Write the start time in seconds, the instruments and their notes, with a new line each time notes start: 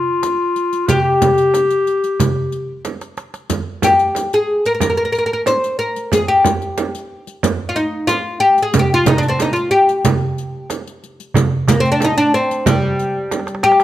Already playing: clarinet F4, oud F4
0.23 riq, darbuka tek, frame drum
0.56 riq
0.73 riq, darbuka ka
0.87 clarinet G4, oud G4, riq, frame drum, darbuka dum
1.22 riq, frame drum, darbuka dum
1.38 riq, darbuka ka
1.54 riq, darbuka tek, frame drum
1.70 riq, darbuka ka
1.87 riq, darbuka ka
2.04 riq
2.20 riq, frame drum, darbuka dum
2.52 riq, darbuka ka
2.85 riq, darbuka tek, frame drum
3.01 riq, darbuka ka
3.17 riq, darbuka tek
3.34 riq, darbuka ka
3.50 riq, frame drum
3.82 oud G4, riq, frame drum
3.99 riq
4.15 riq, frame drum
4.33 oud G#4, riq
4.65 oud A#4, riq
4.75 oud A#4
4.80 oud A#4, riq, frame drum
4.90 oud A#4
4.97 oud A#4
5.05 oud A#4
5.12 oud A#4, riq
5.19 oud A#4
5.26 oud A#4
5.33 oud A#4
5.46 oud C5, riq, frame drum
5.64 riq
5.79 oud A#4, riq
5.96 riq
6.12 oud G#4, riq, frame drum
6.28 oud G4
6.44 riq, frame drum
6.62 riq
6.78 riq, frame drum
6.95 riq
7.27 riq
7.43 riq, frame drum
7.69 oud F4
7.76 oud D#4, riq
8.07 oud F4, riq, frame drum
8.40 oud G4
8.58 riq
8.62 oud G#4
8.74 riq, frame drum, darbuka dum
8.79 oud G4
8.94 oud F4
9.06 oud D#4, riq, darbuka dum, frame drum
9.18 oud D4
9.23 riq
9.28 oud C4 D4
9.39 oud D#4, riq, darbuka tek, frame drum
9.53 oud F4, riq
9.71 oud G4, darbuka ka
9.88 riq, darbuka ka
10.05 riq, darbuka dum, frame drum
10.38 riq
10.70 riq, darbuka tek, frame drum
10.87 riq
11.03 riq, darbuka ka
11.20 riq
11.34 riq, darbuka dum, frame drum
11.68 oud A#3, riq, darbuka dum, frame drum
11.80 oud C4, darbuka ka
11.85 riq
11.92 oud D4
12.00 riq, darbuka tek, frame drum
12.04 oud D#4
12.18 oud D4, riq
12.34 oud C4, riq
12.51 riq
12.66 oud G3, riq, darbuka dum, frame drum
12.99 riq
13.31 riq, darbuka tek, frame drum
13.39 darbuka ka
13.47 riq, darbuka tek
13.55 darbuka ka
13.63 oud G4, clarinet G4, darbuka tek
13.72 darbuka ka
13.80 riq, darbuka tek